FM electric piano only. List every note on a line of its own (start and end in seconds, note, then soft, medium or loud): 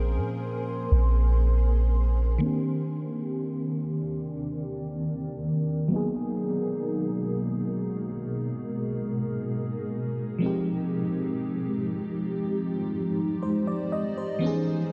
0.00 2.36 F3 medium
0.00 2.37 A#3 medium
0.00 2.38 C4 medium
0.00 2.39 C#4 soft
0.00 2.40 G#4 medium
2.38 5.86 D#3 medium
2.38 5.87 A#3 medium
2.38 5.88 C4 medium
2.44 5.89 D4 medium
2.44 5.90 G4 medium
5.88 9.86 F#3 medium
5.88 9.87 A#3 medium
5.88 9.88 B3 medium
5.94 9.89 D#4 medium
5.94 9.90 G#4 medium
10.38 14.36 F3 medium
10.38 14.37 G#3 medium
10.38 14.38 C4 medium
10.44 14.39 D#4 medium
10.44 14.40 G4 medium
13.43 13.66 C5 medium
13.67 13.91 D5 medium
13.92 14.16 D#5 medium
14.18 14.64 C5 medium
14.39 14.92 E3 medium
14.39 14.92 B3 medium
14.39 14.92 C#4 medium
14.44 14.92 D#4 medium
14.44 14.92 G#4 medium